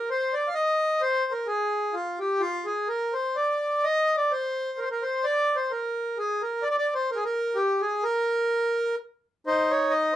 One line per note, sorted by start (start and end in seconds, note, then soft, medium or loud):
0.10 0.35 C5 medium
0.33 0.49 D5 medium
0.48 0.54 F5 medium
0.54 1.02 D#5 medium
1.02 1.33 C5 medium
1.31 1.47 A#4 medium
1.47 1.95 G#4 medium
1.94 2.19 F4 medium
2.19 2.42 G4 medium
2.40 2.66 F4 medium
2.66 2.88 G#4 medium
2.88 3.14 A#4 medium
3.13 3.36 C5 medium
3.36 3.85 D5 medium
3.84 4.16 D#5 medium
4.17 4.32 D5 medium
4.32 4.80 C5 medium
4.78 4.84 A#4 medium
4.78 4.89 C5 medium
4.91 5.04 A#4 medium
5.03 5.25 C5 medium
5.24 5.56 D5 loud
5.56 5.72 C5 medium
5.71 6.18 A#4 medium
6.18 6.42 G#4 medium
6.42 6.64 A#4 medium
6.63 6.69 D5 medium
6.70 6.76 D5 medium
6.78 6.94 D5 medium
6.95 7.10 C5 medium
7.11 7.18 A#4 medium
7.16 7.24 G#4 medium
7.25 7.58 A#4 medium
7.55 7.82 G4 medium
7.81 8.04 G#4 medium
8.04 8.95 A#4 medium
9.47 10.13 D#4 medium
9.47 9.72 C5 medium
9.71 9.93 C#5 medium
9.90 10.16 D#5 medium